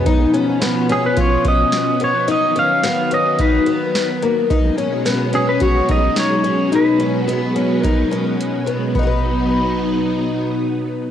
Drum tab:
HH |xxxxxxxx|xxxxxxxx|xxxxxxxx|xxxxxxxx|
SD |--o---o-|--o---o-|--o---o-|--------|
BD |o---oo--|----o---|o---oo--|----o---|

HH |--------|
SD |--------|
BD |o-------|